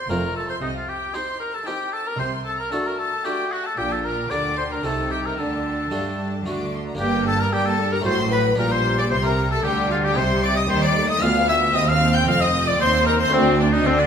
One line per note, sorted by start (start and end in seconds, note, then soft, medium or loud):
0.09 0.51 F1 medium
0.09 0.51 F2 medium
0.09 0.50 F2 soft
0.09 0.58 A3 soft
0.09 0.48 C4 medium
0.09 0.58 C4 soft
0.09 0.59 F4 soft
0.09 0.35 A#4 medium
0.09 0.48 F5 soft
0.09 0.36 A#5 medium
0.36 0.48 A4 medium
0.36 0.49 A5 medium
0.49 0.55 C5 medium
0.49 0.62 C6 medium
0.61 1.03 C2 medium
0.61 1.03 C3 medium
0.61 1.02 C3 soft
0.61 0.67 D#4 medium
0.61 0.75 D#5 medium
0.75 0.90 F4 medium
0.75 0.88 F5 medium
0.88 1.16 G4 medium
0.88 1.14 G5 medium
1.14 1.52 C4 soft
1.14 1.53 D#4 medium
1.14 1.52 D#4 soft
1.14 1.53 G4 soft
1.14 1.39 C5 medium
1.14 1.53 G5 soft
1.14 1.41 C6 medium
1.40 1.55 A#4 medium
1.40 1.54 A#5 medium
1.54 1.68 A4 medium
1.54 1.67 A5 medium
1.67 2.05 C4 soft
1.67 2.06 D#4 medium
1.67 2.05 D#4 soft
1.67 1.95 G4 medium
1.67 2.05 G4 soft
1.67 2.06 G5 medium
1.67 1.93 G5 medium
1.93 2.08 A4 medium
1.93 2.06 A5 medium
2.06 2.19 A#4 medium
2.06 2.19 A#5 medium
2.19 2.61 C2 medium
2.19 2.61 C3 medium
2.19 2.60 C3 soft
2.19 2.31 C5 medium
2.19 2.46 C6 medium
2.45 2.59 A4 medium
2.45 2.59 A5 medium
2.58 2.73 A#4 medium
2.58 2.71 A#5 medium
2.71 3.10 A3 soft
2.71 3.11 D4 medium
2.71 3.10 D4 soft
2.71 3.11 F#4 soft
2.71 2.88 A4 medium
2.71 3.11 F#5 medium
2.71 2.77 A5 medium
2.84 2.98 A#4 medium
2.84 2.98 A#5 medium
2.98 3.26 A4 medium
2.98 3.24 A5 medium
3.24 3.63 A3 soft
3.24 3.64 D4 medium
3.24 3.63 D4 soft
3.24 3.64 F#4 soft
3.24 3.53 G4 medium
3.24 3.65 F#5 medium
3.24 3.51 G5 medium
3.50 3.67 F#4 medium
3.50 3.64 F#5 medium
3.64 3.79 A4 medium
3.64 3.78 A5 medium
3.77 4.27 A#1 medium
3.77 4.27 A#2 soft
3.77 4.27 A#2 medium
3.77 4.27 D4 medium
3.77 3.94 G4 medium
3.77 3.91 G5 medium
3.77 4.27 G5 medium
3.91 4.06 A4 medium
3.91 4.04 A5 medium
4.04 4.32 A#4 medium
4.04 4.30 A#5 medium
4.29 4.84 D2 medium
4.29 4.84 D3 medium
4.29 4.80 D3 soft
4.29 4.83 D4 medium
4.29 4.69 D4 soft
4.29 4.70 G4 soft
4.29 4.57 D5 medium
4.29 4.82 G5 medium
4.29 4.56 D6 medium
4.57 4.64 C5 medium
4.57 4.71 C6 medium
4.70 4.86 A#4 medium
4.70 4.84 A#5 medium
4.83 5.37 C2 medium
4.83 5.37 C3 medium
4.83 5.34 C3 soft
4.83 5.34 A3 soft
4.83 5.38 D#4 soft
4.83 5.34 D#4 soft
4.83 5.35 G4 soft
4.83 5.13 A4 medium
4.83 5.37 G5 medium
4.83 5.11 A5 medium
5.11 5.27 G4 medium
5.11 5.24 G5 medium
5.25 5.40 A#4 medium
5.25 5.38 A#5 medium
5.38 5.91 D2 medium
5.38 5.91 D3 medium
5.38 5.88 D3 soft
5.38 6.44 D4 medium
5.38 6.46 A4 medium
5.38 5.86 G5 soft
5.38 6.44 A5 medium
5.91 6.45 G2 soft
5.91 6.41 G3 soft
5.91 6.44 G3 medium
5.91 6.30 A3 soft
5.91 6.31 D4 soft
5.91 6.31 G4 soft
5.91 6.04 F5 medium
6.06 6.19 G5 soft
6.18 6.46 A5 medium
6.45 6.99 D2 medium
6.45 6.99 D3 medium
6.45 6.95 D3 soft
6.45 6.95 A3 soft
6.45 6.78 D4 soft
6.45 6.95 D4 soft
6.45 6.96 F#4 soft
6.45 6.72 D6 medium
6.73 6.86 C6 medium
6.88 7.00 A#5 medium
6.95 8.00 A#3 medium
6.95 8.01 D4 medium
6.95 8.02 G4 medium
6.99 7.49 G1 medium
6.99 7.49 G2 medium
6.99 7.49 A#3 medium
6.99 7.24 G4 medium
6.99 7.25 G4 medium
6.99 7.25 G5 loud
7.26 7.39 A4 medium
7.26 7.41 A4 medium
7.26 7.40 A5 loud
7.39 7.54 A#4 medium
7.39 7.53 A#4 medium
7.39 7.54 A#5 loud
7.52 8.05 G2 medium
7.52 8.01 G3 medium
7.52 8.04 G3 medium
7.52 7.79 A#3 medium
7.52 7.67 G4 medium
7.52 7.66 G4 medium
7.52 7.66 G5 loud
7.66 7.92 A4 medium
7.66 7.93 A5 loud
7.79 8.06 G3 medium
7.92 7.98 A#4 medium
7.92 8.06 A#4 medium
7.92 8.06 A#5 medium
8.01 8.54 A3 medium
8.01 8.55 C4 medium
8.01 8.56 F#4 medium
8.05 8.57 A1 medium
8.05 8.54 A2 medium
8.05 8.57 A2 medium
8.05 8.58 F#3 medium
8.05 8.17 C5 medium
8.05 8.31 C5 medium
8.05 8.32 C6 loud
8.32 8.44 B4 medium
8.32 8.58 B4 medium
8.32 8.59 B5 loud
8.55 9.10 A#1 medium
8.55 9.10 A#2 medium
8.55 9.07 A#2 medium
8.55 9.63 G3 medium
8.55 10.11 D4 medium
8.55 10.12 G4 medium
8.55 8.64 A#4 medium
8.55 8.73 A#4 medium
8.55 8.71 A#5 loud
8.72 8.97 C5 medium
8.72 8.98 C5 medium
8.72 8.98 C6 loud
8.98 9.04 D5 medium
8.98 9.12 D6 medium
9.11 9.64 C2 medium
9.11 9.64 C3 medium
9.11 9.60 C3 medium
9.11 9.17 C5 medium
9.11 9.24 C6 loud
9.24 9.50 A#4 medium
9.24 9.33 A#4 medium
9.24 9.51 A#5 loud
9.51 9.64 A4 medium
9.51 9.66 A4 medium
9.51 9.64 A5 medium
9.64 10.16 D2 medium
9.64 10.16 D3 medium
9.64 10.13 D3 medium
9.64 10.16 G3 medium
9.64 9.92 G4 medium
9.64 9.91 G4 medium
9.64 9.90 G5 loud
9.90 10.03 F4 medium
9.90 10.05 F4 medium
9.90 9.96 F5 medium
10.03 10.16 G4 medium
10.03 10.18 G4 medium
10.03 10.18 G5 medium
10.14 10.70 C2 medium
10.14 10.70 C3 medium
10.14 10.66 C3 medium
10.14 10.69 G3 medium
10.14 11.18 D#4 medium
10.14 11.18 G4 medium
10.14 10.43 C5 medium
10.14 10.43 C6 loud
10.43 10.56 D5 medium
10.43 10.56 D6 loud
10.56 10.69 D#5 medium
10.56 10.62 D#5 medium
10.56 10.70 D#6 loud
10.69 11.21 D#2 medium
10.69 11.18 D#3 medium
10.69 11.21 D#3 medium
10.69 10.95 G3 medium
10.69 10.82 C5 loud
10.69 10.82 C5 medium
10.69 10.82 C6 loud
10.83 11.09 D5 medium
10.83 11.09 D6 loud
10.96 11.22 A3 medium
11.09 11.22 D#5 medium
11.09 11.23 D#5 medium
11.09 11.22 D#6 loud
11.18 11.74 D2 medium
11.18 11.71 B3 medium
11.18 11.72 D4 medium
11.18 11.73 F4 medium
11.18 11.48 F5 medium
11.18 11.48 F5 loud
11.18 11.49 F6 loud
11.23 11.71 D2 medium
11.23 11.75 B3 medium
11.48 11.75 E5 loud
11.48 11.76 E5 loud
11.48 11.56 E6 loud
11.72 12.26 D#2 medium
11.72 12.23 D#2 medium
11.72 12.26 D#2 medium
11.72 13.27 C4 medium
11.72 12.78 C4 medium
11.72 13.27 G4 medium
11.72 11.90 D#5 loud
11.72 11.88 D#5 medium
11.72 11.88 D#6 loud
11.88 12.17 F5 loud
11.88 12.14 F5 loud
11.88 12.14 F6 loud
12.15 12.28 G5 medium
12.15 12.27 G5 medium
12.15 12.28 G6 loud
12.27 12.80 F1 medium
12.27 12.80 F2 medium
12.27 12.76 F2 medium
12.27 12.42 F5 loud
12.27 12.41 F5 loud
12.27 12.41 F6 loud
12.41 12.66 D#5 loud
12.41 12.67 D#5 loud
12.41 12.67 D#6 loud
12.67 12.80 D5 medium
12.67 12.80 D5 loud
12.67 12.80 D6 loud
12.79 13.31 D#2 medium
12.79 13.28 D#2 medium
12.79 13.31 D#2 medium
12.79 13.31 C4 medium
12.79 13.05 C5 loud
12.79 13.07 C5 loud
12.79 13.05 C6 loud
13.06 13.19 A#4 loud
13.06 13.12 A#4 medium
13.06 13.19 A#5 loud
13.20 13.35 C5 loud
13.20 13.33 C5 loud
13.20 13.32 C6 loud
13.28 14.07 A3 medium
13.28 14.07 D4 medium
13.28 14.07 F#4 medium
13.28 13.58 C5 loud
13.32 13.84 D2 loud
13.32 13.84 D2 medium
13.32 13.81 D2 medium
13.32 13.59 C4 loud
13.32 14.07 D4 medium
13.59 13.65 D4 medium
13.59 13.74 D4 medium
13.59 13.72 D5 loud
13.72 13.77 D#4 medium
13.72 13.88 D#4 loud
13.72 13.85 D#5 loud
13.85 14.07 D2 medium
13.85 14.07 D3 loud
13.85 14.07 D3 medium
13.85 13.90 C4 loud
13.85 14.01 C4 loud
13.85 13.98 C5 loud
13.98 14.07 D4 medium
13.98 14.07 D5 loud